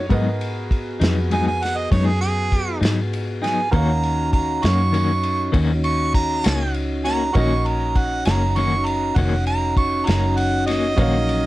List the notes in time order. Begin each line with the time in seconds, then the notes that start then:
0.09 G#2 F#3 B3 D#4 F#4 G#4 A#4 B4 D#5, kick, ride
0.41 ride
0.71 kick, ride
1.00 F2 F#3 B3 D#4, snare, ride
1.30 G#2 F#3 B3 D#4 G#5, ride
1.47 G#5
1.62 F#5, snare, ride
1.77 D#5
1.91 F#2 G#2 F#3 B3 D#4 C#5, kick, ride
2.06 G#4
2.21 G#4, ride
2.52 kick, ride
2.81 G#2 F#3 B3 D#4, ride
2.85 snare
3.13 ride
3.42 F#3 B3 D#4 G#5, ride
3.46 snare
3.71 D#2 D#3 A#3 C#4 D#4 F#4 A#4 C#5 A#5, kick, ride
3.75 F5
4.03 ride
4.32 A#5, kick, ride
4.63 F#2 A#3 C#4 F#4 C#6, snare, ride
4.92 D#3 A#3 C#4 F#4, ride
5.23 ride
5.52 D#2 D#3 A#3 C#4 F#4, kick, ride
5.84 C#6, ride
6.14 A#5, kick, ride
6.44 C#2 A#3 C#4 F#4, snare, ride
6.74 ride
7.05 A#3 C#4 F#4 A#5, snare, ride
7.33 A#1 D#3 A#3 C#4 D#4 F#4 A#4 C#5 D#5 C#6, kick, ride
7.37 C#4 F#4
7.66 A#5, ride
7.96 F#5, kick, ride
8.25 F#1 A#3 C#4 F#4 A#5, snare, ride
8.56 D#3 A#3 C#4 F#4 C#6, ride
8.86 A#5, ride
9.16 F1 D#3 A#3 C#4 F#4 F#5, kick, ride
9.46 A#5, ride
9.77 C#6, kick, ride
10.06 F#1 A#3 C#4 F#4 A#5, snare, ride
10.37 F#5, ride
10.66 C#4 F#4 D#5, snare, ride
10.70 A#3
10.96 A#1 D#3 F#3 A#3 C#4 D#4 F#4 A#4 C#5, kick, ride
11.00 F5
11.29 ride